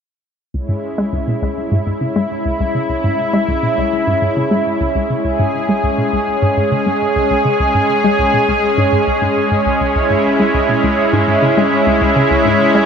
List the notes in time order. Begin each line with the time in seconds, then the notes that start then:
0.54 C#2 G#3 C#4 E4 C#5
0.69 G#2
0.98 G#3
1.13 C#2
1.28 B2
1.42 C#2
1.72 G#2
1.87 G#2
2.01 C#3
2.16 G#3
2.45 C#2
2.60 C#2
2.75 C#3
2.90 C#2
3.04 G#2
3.33 G#3
3.48 C#2
3.63 B2
3.78 C#2
4.07 G#2
4.22 G#2
4.37 C#3
4.51 G#3
4.81 C#2
4.95 C#2
5.10 C#3
5.25 C#2 G#4
5.39 G#2
5.69 G#3
5.84 C#2
5.98 B2
6.13 C#2
6.42 G#2
6.57 G#2
6.72 C#3
6.86 G#3
7.16 C#2
7.31 C#2
7.45 C#3
7.60 C#2
7.75 G#2
8.04 G#3
8.19 C#2
8.34 B2
8.48 C#2
8.78 G#2
8.93 G#2
9.07 C#2
9.22 G#2
9.51 G#2
9.66 C#2
9.81 C#2
9.96 C#2 E4
10.10 G#2
10.40 G#3
10.54 C#2
10.69 B2
10.84 C#2
11.13 G#2
11.28 G#2
11.43 C#3
11.57 G#3
11.87 C#2
12.02 C#2
12.16 C#3
12.31 C#2
12.46 G#2
12.75 G#3